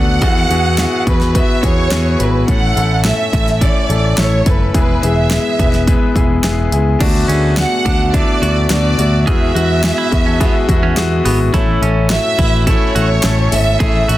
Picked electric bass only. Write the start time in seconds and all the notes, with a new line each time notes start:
Already playing: D2
0.22 E2
0.50 E2
1.07 E2
1.63 E2
1.92 E2
2.20 G#1
2.48 A1
2.76 A1
3.33 A1
3.89 A1
4.18 A1
4.46 F#1
4.74 E1
5.03 E1
5.59 E1
6.16 E1
6.44 E1
6.72 C#2
7.00 D2
7.28 D2
7.86 D2
8.42 D2
8.70 D2
8.98 D2
9.27 E2
9.55 E2
10.12 E2
10.69 E2
10.97 E2
11.25 G#1
11.54 A1
11.82 A1
12.39 A1
12.96 A1
13.24 A1
13.53 G#1
13.80 A1
14.09 A1